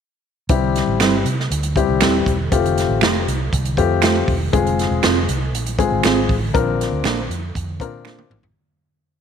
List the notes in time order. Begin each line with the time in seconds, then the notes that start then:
0.49 C2 G3 C4 E4 G4, kick, closed hi-hat
0.76 snare, closed hi-hat
0.87 A1
1.00 G1 G3 C4 E4 C5, finger snap, snare, closed hi-hat
1.25 C3, closed hi-hat
1.40 snare
1.51 D2, closed hi-hat
1.63 closed hi-hat
1.76 G3 C4 E4 G4, kick, closed hi-hat
1.88 C2
2.01 D#1 G3 C4 E4 C5, finger snap, snare, closed hi-hat
2.26 E1, kick, closed hi-hat
2.52 F1 A3 C4 F4 G4, kick, closed hi-hat
2.66 closed hi-hat
2.78 snare, closed hi-hat
2.89 A1
3.01 A3 F4 G4 C5, finger snap, snare, closed hi-hat
3.27 C2, closed hi-hat
3.52 C2, kick, closed hi-hat
3.65 closed hi-hat
3.77 F2 A3 C4 F4 G4, kick, closed hi-hat
4.02 A3 F4 G4 C5, finger snap, snare, closed hi-hat
4.28 E1, kick, open hi-hat
4.53 F1 G#3 C4 F4 G#4, kick, closed hi-hat
4.67 closed hi-hat
4.79 snare, closed hi-hat
4.91 E1
5.03 F1 C4 F4 G#4 C5, finger snap, snare, closed hi-hat
5.29 C2, closed hi-hat
5.54 A#1, closed hi-hat
5.66 closed hi-hat
5.79 G#3 C4 F4 G#4, kick, closed hi-hat
5.92 G#1
6.03 G#1 C4 F4 G#4 C5, finger snap, snare, closed hi-hat
6.29 A1, kick, open hi-hat
6.54 A#1 C4 D4 F4 A#4, kick, closed hi-hat
6.81 snare, closed hi-hat
6.92 D2
7.03 A#1 A#3 D4 F4 C5, finger snap, snare, closed hi-hat
7.29 F2, closed hi-hat
7.55 F2, kick, closed hi-hat
7.80 A#2 C4 D4 F4 A#4, kick, closed hi-hat
8.05 A#3 D4 F4 C5, finger snap, snare
8.19 high tom
8.30 A1, mid tom
8.43 floor tom